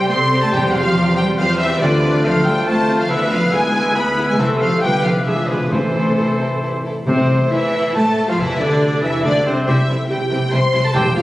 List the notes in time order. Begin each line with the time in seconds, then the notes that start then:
Already playing: C3 G3 C4 E4 G4 C5 E5 G5 C6
0.10 C2 C4 G4 A4 C6
0.32 C4 G4 C5
0.42 A3 A5
0.53 E2 E3 G3 C4 G4 G5
0.74 F3 C4 G4 F5
0.96 E2 C4 G4
1.17 G3 C4 G4 C5 G5
1.38 E2 F3 C4 G4 C5 F5
1.59 E3 C4 G4 C5 E5
1.81 D2 D3 A3 C4 F4 B4 C5 D5 F6
2.03 C4 F4
2.24 D2 F3 A3 C4 F4 A4 C5 F5 F6
2.45 G3 C4 F4 A4 G5
2.66 D2 A3 C4 F4 C5 A5 F6
2.87 C4 F4 A4
2.99 F3 F5
3.09 D2 D3 E3 B3 E4 B4 E5 E6
3.30 F3 B3 E4 F5
3.51 D2 G#3 B3 E4 G#4 B4 G#5 E6
3.74 B3 E4
3.95 D2 B3 E4 B4 B5 E6
4.16 B3 E4 B4
4.28 G#3 G#5
4.38 C2 C3 E3 A3 C4 E4 A4 C5 E5 E6
4.60 F3 C4 E4 A4 F5
4.81 D2 D3 F3 G3 B3 D4 F4 B4 G5 D6
5.03 F3 D4 E4 F4 B4 F5
5.25 E2 E3 F3 G#3 F4 G#4 E5 D6
5.47 B2 D4 F4 G#4 B4
5.70 A1 A2 C3 E3 A3 E4 A4 C5 C6
5.93 A3 E4 A4
6.16 A1 E4 A4
6.38 E4 A4
6.61 A1 E4 A4
6.83 E4 A4
7.05 C2 A2 C3 C4 C5
7.29 A3
7.50 E2 E3 E4 E5
7.73 C5
7.94 A2 A3 A4 A5
8.16 E4
8.28 F3 F4 F5
8.38 E2 C3 E3 E4 E5
8.60 D2 D3 C4 D4 D5
8.81 A4
9.02 E2 E3 E4 E5
9.23 D2 D3 D4 C5 D5
9.46 C2 C3 C4 A4 C5
9.67 C2 C3 E3 G3 C4 E4 G4 C5 E5 G6
9.88 C2 C3 E3 G3 C4 E4
10.09 C2 C3 E3 G3 C4 E4 G4 G5
10.30 C2 C3 E3 G3 C4 E4 G5
10.52 C2 C3 E3 G3 C4 E4 C5 C6
10.73 C2 C3 E3 G3 C4 E4 G4
10.84 A4 A5
10.94 E1 E2 E3 G3 C4 E4 G4 C5 G5 G6
11.15 E1 E2 E3 G3 C4 E4 F4 F5